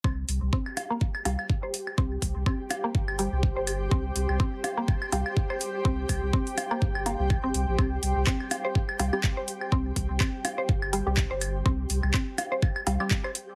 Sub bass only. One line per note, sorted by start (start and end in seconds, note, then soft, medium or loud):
0.04 0.24 C2 medium
0.29 0.39 C2 medium
0.42 0.51 C2 medium
1.25 1.36 C2 medium
1.98 2.18 C2 medium
2.22 2.33 C2 medium
2.36 2.44 C2 medium
2.95 3.28 G1 medium
3.32 3.51 C2 loud
3.57 3.88 G1 medium
3.91 4.11 C2 medium
4.16 4.26 C2 medium
4.29 4.38 C2 medium
5.12 5.23 C2 medium
5.85 6.05 C2 loud
6.09 6.20 C2 medium
6.23 6.31 C2 medium
6.82 7.15 G1 medium
7.19 7.38 C2 medium
7.44 7.52 G1 loud
7.54 7.65 C2 medium
7.68 7.76 A#1 medium
7.79 7.98 C2 loud
8.03 8.13 C2 medium
8.16 8.25 C2 medium
9.00 9.10 C2 medium
9.72 9.92 C2 loud
9.96 10.07 C2 medium
10.10 10.18 C2 medium
10.69 11.02 G1 medium
11.07 11.25 C2 loud
11.31 11.62 G1 loud
11.66 11.85 C2 loud
11.90 12.00 C2 medium
12.03 12.12 C2 medium
12.87 12.97 C2 medium